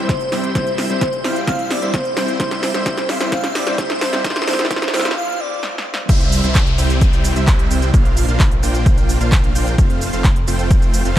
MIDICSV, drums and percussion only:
0, 0, Header, 1, 2, 480
1, 0, Start_track
1, 0, Tempo, 461538
1, 575, Time_signature, 4, 2, 24, 8
1, 11637, End_track
2, 0, Start_track
2, 0, Title_t, "Drums"
2, 95, Note_on_c, 9, 36, 119
2, 95, Note_on_c, 9, 38, 79
2, 95, Note_on_c, 9, 42, 90
2, 199, Note_off_c, 9, 36, 0
2, 199, Note_off_c, 9, 38, 0
2, 199, Note_off_c, 9, 42, 0
2, 214, Note_on_c, 9, 42, 37
2, 318, Note_off_c, 9, 42, 0
2, 334, Note_on_c, 9, 38, 82
2, 334, Note_on_c, 9, 46, 92
2, 438, Note_off_c, 9, 38, 0
2, 438, Note_off_c, 9, 46, 0
2, 454, Note_on_c, 9, 42, 36
2, 558, Note_off_c, 9, 42, 0
2, 574, Note_on_c, 9, 36, 113
2, 574, Note_on_c, 9, 38, 84
2, 574, Note_on_c, 9, 42, 90
2, 678, Note_off_c, 9, 36, 0
2, 678, Note_off_c, 9, 38, 0
2, 678, Note_off_c, 9, 42, 0
2, 694, Note_on_c, 9, 42, 39
2, 798, Note_off_c, 9, 42, 0
2, 813, Note_on_c, 9, 38, 81
2, 813, Note_on_c, 9, 46, 100
2, 917, Note_off_c, 9, 38, 0
2, 917, Note_off_c, 9, 46, 0
2, 934, Note_on_c, 9, 42, 39
2, 1038, Note_off_c, 9, 42, 0
2, 1054, Note_on_c, 9, 36, 114
2, 1054, Note_on_c, 9, 38, 83
2, 1054, Note_on_c, 9, 42, 93
2, 1158, Note_off_c, 9, 36, 0
2, 1158, Note_off_c, 9, 38, 0
2, 1158, Note_off_c, 9, 42, 0
2, 1174, Note_on_c, 9, 42, 38
2, 1278, Note_off_c, 9, 42, 0
2, 1294, Note_on_c, 9, 38, 83
2, 1294, Note_on_c, 9, 46, 91
2, 1398, Note_off_c, 9, 38, 0
2, 1398, Note_off_c, 9, 46, 0
2, 1414, Note_on_c, 9, 42, 38
2, 1518, Note_off_c, 9, 42, 0
2, 1534, Note_on_c, 9, 36, 115
2, 1534, Note_on_c, 9, 38, 90
2, 1534, Note_on_c, 9, 42, 96
2, 1638, Note_off_c, 9, 36, 0
2, 1638, Note_off_c, 9, 38, 0
2, 1638, Note_off_c, 9, 42, 0
2, 1654, Note_on_c, 9, 42, 38
2, 1758, Note_off_c, 9, 42, 0
2, 1774, Note_on_c, 9, 38, 88
2, 1774, Note_on_c, 9, 46, 104
2, 1878, Note_off_c, 9, 38, 0
2, 1878, Note_off_c, 9, 46, 0
2, 1894, Note_on_c, 9, 42, 39
2, 1998, Note_off_c, 9, 42, 0
2, 2014, Note_on_c, 9, 36, 118
2, 2014, Note_on_c, 9, 38, 92
2, 2014, Note_on_c, 9, 42, 92
2, 2118, Note_off_c, 9, 36, 0
2, 2118, Note_off_c, 9, 38, 0
2, 2118, Note_off_c, 9, 42, 0
2, 2134, Note_on_c, 9, 42, 38
2, 2238, Note_off_c, 9, 42, 0
2, 2254, Note_on_c, 9, 38, 92
2, 2254, Note_on_c, 9, 46, 92
2, 2358, Note_off_c, 9, 38, 0
2, 2358, Note_off_c, 9, 46, 0
2, 2374, Note_on_c, 9, 42, 39
2, 2478, Note_off_c, 9, 42, 0
2, 2493, Note_on_c, 9, 38, 90
2, 2493, Note_on_c, 9, 42, 95
2, 2494, Note_on_c, 9, 36, 115
2, 2597, Note_off_c, 9, 38, 0
2, 2597, Note_off_c, 9, 42, 0
2, 2598, Note_off_c, 9, 36, 0
2, 2614, Note_on_c, 9, 38, 83
2, 2614, Note_on_c, 9, 42, 42
2, 2718, Note_off_c, 9, 38, 0
2, 2718, Note_off_c, 9, 42, 0
2, 2733, Note_on_c, 9, 38, 90
2, 2733, Note_on_c, 9, 46, 96
2, 2837, Note_off_c, 9, 38, 0
2, 2837, Note_off_c, 9, 46, 0
2, 2854, Note_on_c, 9, 38, 78
2, 2854, Note_on_c, 9, 42, 39
2, 2958, Note_off_c, 9, 38, 0
2, 2958, Note_off_c, 9, 42, 0
2, 2974, Note_on_c, 9, 36, 115
2, 2974, Note_on_c, 9, 38, 93
2, 2974, Note_on_c, 9, 42, 96
2, 3078, Note_off_c, 9, 36, 0
2, 3078, Note_off_c, 9, 38, 0
2, 3078, Note_off_c, 9, 42, 0
2, 3094, Note_on_c, 9, 38, 83
2, 3094, Note_on_c, 9, 42, 42
2, 3198, Note_off_c, 9, 38, 0
2, 3198, Note_off_c, 9, 42, 0
2, 3213, Note_on_c, 9, 38, 94
2, 3213, Note_on_c, 9, 46, 88
2, 3317, Note_off_c, 9, 38, 0
2, 3317, Note_off_c, 9, 46, 0
2, 3334, Note_on_c, 9, 38, 84
2, 3334, Note_on_c, 9, 42, 40
2, 3438, Note_off_c, 9, 38, 0
2, 3438, Note_off_c, 9, 42, 0
2, 3453, Note_on_c, 9, 38, 100
2, 3453, Note_on_c, 9, 42, 101
2, 3454, Note_on_c, 9, 36, 115
2, 3557, Note_off_c, 9, 38, 0
2, 3557, Note_off_c, 9, 42, 0
2, 3558, Note_off_c, 9, 36, 0
2, 3574, Note_on_c, 9, 38, 84
2, 3574, Note_on_c, 9, 42, 41
2, 3678, Note_off_c, 9, 38, 0
2, 3678, Note_off_c, 9, 42, 0
2, 3694, Note_on_c, 9, 38, 98
2, 3694, Note_on_c, 9, 46, 103
2, 3798, Note_off_c, 9, 38, 0
2, 3798, Note_off_c, 9, 46, 0
2, 3814, Note_on_c, 9, 38, 88
2, 3814, Note_on_c, 9, 42, 41
2, 3918, Note_off_c, 9, 38, 0
2, 3918, Note_off_c, 9, 42, 0
2, 3934, Note_on_c, 9, 36, 116
2, 3934, Note_on_c, 9, 38, 103
2, 3934, Note_on_c, 9, 42, 96
2, 4038, Note_off_c, 9, 36, 0
2, 4038, Note_off_c, 9, 38, 0
2, 4038, Note_off_c, 9, 42, 0
2, 4054, Note_on_c, 9, 38, 86
2, 4054, Note_on_c, 9, 42, 41
2, 4158, Note_off_c, 9, 38, 0
2, 4158, Note_off_c, 9, 42, 0
2, 4174, Note_on_c, 9, 38, 105
2, 4174, Note_on_c, 9, 46, 90
2, 4278, Note_off_c, 9, 38, 0
2, 4278, Note_off_c, 9, 46, 0
2, 4294, Note_on_c, 9, 38, 87
2, 4294, Note_on_c, 9, 42, 41
2, 4398, Note_off_c, 9, 38, 0
2, 4398, Note_off_c, 9, 42, 0
2, 4414, Note_on_c, 9, 36, 116
2, 4414, Note_on_c, 9, 38, 102
2, 4414, Note_on_c, 9, 42, 100
2, 4474, Note_off_c, 9, 38, 0
2, 4474, Note_on_c, 9, 38, 89
2, 4518, Note_off_c, 9, 36, 0
2, 4518, Note_off_c, 9, 42, 0
2, 4534, Note_off_c, 9, 38, 0
2, 4534, Note_on_c, 9, 38, 90
2, 4534, Note_on_c, 9, 42, 43
2, 4594, Note_off_c, 9, 38, 0
2, 4594, Note_on_c, 9, 38, 91
2, 4638, Note_off_c, 9, 42, 0
2, 4654, Note_off_c, 9, 38, 0
2, 4654, Note_on_c, 9, 38, 100
2, 4654, Note_on_c, 9, 46, 103
2, 4714, Note_off_c, 9, 38, 0
2, 4714, Note_on_c, 9, 38, 87
2, 4758, Note_off_c, 9, 46, 0
2, 4774, Note_off_c, 9, 38, 0
2, 4774, Note_on_c, 9, 38, 90
2, 4774, Note_on_c, 9, 42, 42
2, 4834, Note_off_c, 9, 38, 0
2, 4834, Note_on_c, 9, 38, 90
2, 4878, Note_off_c, 9, 42, 0
2, 4894, Note_off_c, 9, 38, 0
2, 4894, Note_on_c, 9, 36, 114
2, 4894, Note_on_c, 9, 38, 108
2, 4894, Note_on_c, 9, 42, 102
2, 4954, Note_off_c, 9, 38, 0
2, 4954, Note_on_c, 9, 38, 95
2, 4998, Note_off_c, 9, 36, 0
2, 4998, Note_off_c, 9, 42, 0
2, 5014, Note_off_c, 9, 38, 0
2, 5014, Note_on_c, 9, 38, 95
2, 5014, Note_on_c, 9, 42, 41
2, 5074, Note_off_c, 9, 38, 0
2, 5074, Note_on_c, 9, 38, 94
2, 5118, Note_off_c, 9, 42, 0
2, 5134, Note_off_c, 9, 38, 0
2, 5134, Note_on_c, 9, 38, 105
2, 5134, Note_on_c, 9, 46, 90
2, 5194, Note_off_c, 9, 38, 0
2, 5194, Note_on_c, 9, 38, 92
2, 5238, Note_off_c, 9, 46, 0
2, 5254, Note_off_c, 9, 38, 0
2, 5254, Note_on_c, 9, 38, 92
2, 5254, Note_on_c, 9, 42, 41
2, 5314, Note_off_c, 9, 38, 0
2, 5314, Note_on_c, 9, 38, 92
2, 5358, Note_off_c, 9, 42, 0
2, 5418, Note_off_c, 9, 38, 0
2, 5854, Note_on_c, 9, 38, 69
2, 5958, Note_off_c, 9, 38, 0
2, 6014, Note_on_c, 9, 38, 78
2, 6118, Note_off_c, 9, 38, 0
2, 6175, Note_on_c, 9, 38, 97
2, 6279, Note_off_c, 9, 38, 0
2, 6335, Note_on_c, 9, 36, 118
2, 6335, Note_on_c, 9, 42, 99
2, 6335, Note_on_c, 9, 49, 106
2, 6336, Note_on_c, 9, 69, 45
2, 6439, Note_off_c, 9, 36, 0
2, 6439, Note_off_c, 9, 42, 0
2, 6439, Note_off_c, 9, 49, 0
2, 6440, Note_off_c, 9, 69, 0
2, 6454, Note_on_c, 9, 42, 42
2, 6558, Note_off_c, 9, 42, 0
2, 6574, Note_on_c, 9, 46, 103
2, 6576, Note_on_c, 9, 69, 78
2, 6678, Note_off_c, 9, 46, 0
2, 6680, Note_off_c, 9, 69, 0
2, 6694, Note_on_c, 9, 42, 41
2, 6696, Note_on_c, 9, 69, 32
2, 6798, Note_off_c, 9, 42, 0
2, 6800, Note_off_c, 9, 69, 0
2, 6812, Note_on_c, 9, 39, 126
2, 6815, Note_on_c, 9, 36, 115
2, 6815, Note_on_c, 9, 42, 101
2, 6816, Note_on_c, 9, 69, 44
2, 6916, Note_off_c, 9, 39, 0
2, 6919, Note_off_c, 9, 36, 0
2, 6919, Note_off_c, 9, 42, 0
2, 6920, Note_off_c, 9, 69, 0
2, 6935, Note_on_c, 9, 42, 42
2, 7039, Note_off_c, 9, 42, 0
2, 7055, Note_on_c, 9, 46, 94
2, 7056, Note_on_c, 9, 69, 80
2, 7159, Note_off_c, 9, 46, 0
2, 7160, Note_off_c, 9, 69, 0
2, 7175, Note_on_c, 9, 42, 42
2, 7176, Note_on_c, 9, 69, 34
2, 7279, Note_off_c, 9, 42, 0
2, 7280, Note_off_c, 9, 69, 0
2, 7295, Note_on_c, 9, 36, 120
2, 7295, Note_on_c, 9, 42, 100
2, 7296, Note_on_c, 9, 69, 47
2, 7399, Note_off_c, 9, 36, 0
2, 7399, Note_off_c, 9, 42, 0
2, 7400, Note_off_c, 9, 69, 0
2, 7415, Note_on_c, 9, 42, 41
2, 7416, Note_on_c, 9, 69, 31
2, 7519, Note_off_c, 9, 42, 0
2, 7520, Note_off_c, 9, 69, 0
2, 7535, Note_on_c, 9, 46, 107
2, 7536, Note_on_c, 9, 69, 80
2, 7639, Note_off_c, 9, 46, 0
2, 7640, Note_off_c, 9, 69, 0
2, 7655, Note_on_c, 9, 42, 43
2, 7657, Note_on_c, 9, 69, 35
2, 7759, Note_off_c, 9, 42, 0
2, 7761, Note_off_c, 9, 69, 0
2, 7773, Note_on_c, 9, 39, 127
2, 7775, Note_on_c, 9, 36, 120
2, 7775, Note_on_c, 9, 42, 98
2, 7776, Note_on_c, 9, 69, 45
2, 7877, Note_off_c, 9, 39, 0
2, 7879, Note_off_c, 9, 36, 0
2, 7879, Note_off_c, 9, 42, 0
2, 7880, Note_off_c, 9, 69, 0
2, 7895, Note_on_c, 9, 42, 41
2, 7999, Note_off_c, 9, 42, 0
2, 8015, Note_on_c, 9, 46, 95
2, 8016, Note_on_c, 9, 69, 79
2, 8119, Note_off_c, 9, 46, 0
2, 8120, Note_off_c, 9, 69, 0
2, 8135, Note_on_c, 9, 42, 42
2, 8136, Note_on_c, 9, 69, 34
2, 8239, Note_off_c, 9, 42, 0
2, 8240, Note_off_c, 9, 69, 0
2, 8255, Note_on_c, 9, 36, 126
2, 8255, Note_on_c, 9, 42, 95
2, 8257, Note_on_c, 9, 69, 44
2, 8359, Note_off_c, 9, 36, 0
2, 8359, Note_off_c, 9, 42, 0
2, 8361, Note_off_c, 9, 69, 0
2, 8375, Note_on_c, 9, 42, 40
2, 8479, Note_off_c, 9, 42, 0
2, 8495, Note_on_c, 9, 46, 111
2, 8496, Note_on_c, 9, 69, 72
2, 8599, Note_off_c, 9, 46, 0
2, 8600, Note_off_c, 9, 69, 0
2, 8616, Note_on_c, 9, 42, 39
2, 8617, Note_on_c, 9, 69, 32
2, 8720, Note_off_c, 9, 42, 0
2, 8721, Note_off_c, 9, 69, 0
2, 8733, Note_on_c, 9, 39, 127
2, 8735, Note_on_c, 9, 36, 121
2, 8735, Note_on_c, 9, 42, 97
2, 8737, Note_on_c, 9, 69, 44
2, 8837, Note_off_c, 9, 39, 0
2, 8839, Note_off_c, 9, 36, 0
2, 8839, Note_off_c, 9, 42, 0
2, 8841, Note_off_c, 9, 69, 0
2, 8855, Note_on_c, 9, 42, 41
2, 8959, Note_off_c, 9, 42, 0
2, 8975, Note_on_c, 9, 46, 95
2, 8977, Note_on_c, 9, 69, 74
2, 9079, Note_off_c, 9, 46, 0
2, 9081, Note_off_c, 9, 69, 0
2, 9096, Note_on_c, 9, 42, 39
2, 9097, Note_on_c, 9, 69, 33
2, 9200, Note_off_c, 9, 42, 0
2, 9201, Note_off_c, 9, 69, 0
2, 9215, Note_on_c, 9, 36, 123
2, 9216, Note_on_c, 9, 42, 97
2, 9217, Note_on_c, 9, 69, 45
2, 9319, Note_off_c, 9, 36, 0
2, 9320, Note_off_c, 9, 42, 0
2, 9321, Note_off_c, 9, 69, 0
2, 9335, Note_on_c, 9, 42, 40
2, 9337, Note_on_c, 9, 69, 29
2, 9439, Note_off_c, 9, 42, 0
2, 9441, Note_off_c, 9, 69, 0
2, 9455, Note_on_c, 9, 46, 114
2, 9457, Note_on_c, 9, 69, 76
2, 9559, Note_off_c, 9, 46, 0
2, 9561, Note_off_c, 9, 69, 0
2, 9576, Note_on_c, 9, 42, 41
2, 9577, Note_on_c, 9, 69, 33
2, 9680, Note_off_c, 9, 42, 0
2, 9681, Note_off_c, 9, 69, 0
2, 9693, Note_on_c, 9, 39, 126
2, 9695, Note_on_c, 9, 36, 126
2, 9695, Note_on_c, 9, 42, 98
2, 9696, Note_on_c, 9, 69, 45
2, 9797, Note_off_c, 9, 39, 0
2, 9799, Note_off_c, 9, 36, 0
2, 9799, Note_off_c, 9, 42, 0
2, 9800, Note_off_c, 9, 69, 0
2, 9816, Note_on_c, 9, 42, 39
2, 9920, Note_off_c, 9, 42, 0
2, 9935, Note_on_c, 9, 46, 99
2, 9937, Note_on_c, 9, 69, 77
2, 10039, Note_off_c, 9, 46, 0
2, 10041, Note_off_c, 9, 69, 0
2, 10055, Note_on_c, 9, 42, 40
2, 10057, Note_on_c, 9, 69, 33
2, 10159, Note_off_c, 9, 42, 0
2, 10161, Note_off_c, 9, 69, 0
2, 10175, Note_on_c, 9, 36, 123
2, 10175, Note_on_c, 9, 42, 92
2, 10177, Note_on_c, 9, 69, 44
2, 10279, Note_off_c, 9, 36, 0
2, 10279, Note_off_c, 9, 42, 0
2, 10281, Note_off_c, 9, 69, 0
2, 10295, Note_on_c, 9, 42, 39
2, 10399, Note_off_c, 9, 42, 0
2, 10415, Note_on_c, 9, 46, 110
2, 10416, Note_on_c, 9, 69, 72
2, 10519, Note_off_c, 9, 46, 0
2, 10520, Note_off_c, 9, 69, 0
2, 10535, Note_on_c, 9, 42, 37
2, 10536, Note_on_c, 9, 69, 31
2, 10639, Note_off_c, 9, 42, 0
2, 10640, Note_off_c, 9, 69, 0
2, 10653, Note_on_c, 9, 39, 125
2, 10655, Note_on_c, 9, 36, 127
2, 10655, Note_on_c, 9, 42, 92
2, 10656, Note_on_c, 9, 69, 44
2, 10757, Note_off_c, 9, 39, 0
2, 10759, Note_off_c, 9, 36, 0
2, 10759, Note_off_c, 9, 42, 0
2, 10760, Note_off_c, 9, 69, 0
2, 10775, Note_on_c, 9, 42, 40
2, 10879, Note_off_c, 9, 42, 0
2, 10895, Note_on_c, 9, 46, 100
2, 10896, Note_on_c, 9, 69, 74
2, 10999, Note_off_c, 9, 46, 0
2, 11000, Note_off_c, 9, 69, 0
2, 11015, Note_on_c, 9, 42, 38
2, 11016, Note_on_c, 9, 69, 31
2, 11119, Note_off_c, 9, 42, 0
2, 11120, Note_off_c, 9, 69, 0
2, 11135, Note_on_c, 9, 36, 122
2, 11135, Note_on_c, 9, 42, 94
2, 11136, Note_on_c, 9, 69, 44
2, 11239, Note_off_c, 9, 36, 0
2, 11239, Note_off_c, 9, 42, 0
2, 11240, Note_off_c, 9, 69, 0
2, 11254, Note_on_c, 9, 42, 38
2, 11256, Note_on_c, 9, 69, 31
2, 11358, Note_off_c, 9, 42, 0
2, 11360, Note_off_c, 9, 69, 0
2, 11374, Note_on_c, 9, 46, 113
2, 11376, Note_on_c, 9, 69, 76
2, 11478, Note_off_c, 9, 46, 0
2, 11480, Note_off_c, 9, 69, 0
2, 11495, Note_on_c, 9, 42, 39
2, 11496, Note_on_c, 9, 69, 33
2, 11599, Note_off_c, 9, 42, 0
2, 11600, Note_off_c, 9, 69, 0
2, 11637, End_track
0, 0, End_of_file